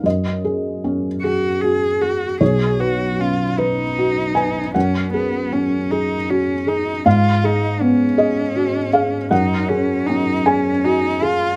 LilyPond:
<<
  \new Staff \with { instrumentName = "Felt piano" } { \time 6/8 \key ges \major \tempo 4. = 52 << { ees''2. | cis''4. b'4 aes''8 | ges''2. | f''4. ees''4 f''8 |
ges''4. aes''4. | } \\ { ges,8 aes'8 des'8 aes'8 ges'8 aes'8 | b,,8 b'8 cis'4 fis'8 b'8 | ges,8 aes'8 des'8 aes'8 ges'8 aes'8 | aes,8 aes'8 ces'8 aes'8 ges'8 aes'8 |
ges,8 aes'8 des'8 aes'8 ges'8 aes'8 | } >> }
  \new Staff \with { instrumentName = "Cello" } { \time 6/8 \key ges \major r4. ges'8 aes'8 ges'8 | aes'8 fis'8 f'8 ees'4. | des'8 ces'8 des'8 ees'8 des'8 ees'8 | f'8 ees'8 des'2 |
ees'8 des'8 ees'8 des'8 ees'8 f'8 | }
>>